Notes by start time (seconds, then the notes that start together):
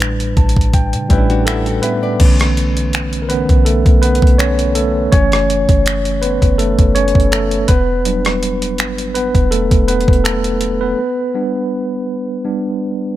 Already playing: A1 A2 G3 D4 B4
0.00 finger snap, closed hi-hat
0.20 closed hi-hat
0.37 A1 A5, kick, closed hi-hat
0.49 closed hi-hat
0.56 kick
0.61 closed hi-hat
0.74 G5, kick, closed hi-hat
0.93 C#3, closed hi-hat
1.09 A1 A2 G3 C#4 E4 B4 G5, kick, closed hi-hat
1.18 D4
1.30 D4 F#4, closed hi-hat
1.45 A3 E4 G4 A4 F#5, finger snap, closed hi-hat
1.66 F#4 A4, closed hi-hat
1.82 B3 G4 B4 E5, closed hi-hat
2.03 B4 D5
2.20 B1 D3 E3 A3 C#4, kick, closed hi-hat, crash
2.40 cross-stick, closed hi-hat
2.57 closed hi-hat
2.77 closed hi-hat
2.93 finger snap, closed hi-hat
3.13 closed hi-hat
3.22 A#4
3.29 D3 E3 A3 B3 C#4 B4, closed hi-hat
3.49 B1, kick, closed hi-hat
3.65 A3 A4, closed hi-hat
3.86 B1, kick, closed hi-hat
4.02 B3 B4, closed hi-hat
4.15 closed hi-hat
4.22 B1, kick
4.27 closed hi-hat
4.38 C#4 C#5, finger snap, closed hi-hat
4.59 closed hi-hat
4.75 A3 A4, closed hi-hat
5.12 F#1 E3 A3 C#4 C#5, kick, closed hi-hat
5.32 cross-stick, closed hi-hat
5.50 closed hi-hat
5.69 F#1, kick, closed hi-hat
5.86 finger snap, closed hi-hat
6.05 closed hi-hat
6.22 B3 B4, closed hi-hat
6.42 F#1, kick, closed hi-hat
6.58 A3 A4, closed hi-hat
6.79 F#1, kick, closed hi-hat
6.95 C#4 C#5, closed hi-hat
7.08 closed hi-hat
7.15 F#1, kick
7.20 closed hi-hat
7.32 A3 A4, finger snap, closed hi-hat
7.51 closed hi-hat
7.68 E1 B3 B4, kick, closed hi-hat
8.05 F#3 G3 D4, closed hi-hat
8.25 cross-stick, closed hi-hat
8.43 closed hi-hat
8.62 closed hi-hat
8.78 G1, finger snap, closed hi-hat
8.98 closed hi-hat
9.14 B3 B4, closed hi-hat
9.35 E1, kick, closed hi-hat
9.51 A3 A4, closed hi-hat
9.71 E1, kick, closed hi-hat
9.88 B3 B4, closed hi-hat
10.01 closed hi-hat
10.08 E1, kick
10.13 closed hi-hat
10.24 A3 A4, finger snap, closed hi-hat
10.44 closed hi-hat
10.61 closed hi-hat
10.81 B3 B4
11.34 G3 B3 D4
12.45 G3 B3 D4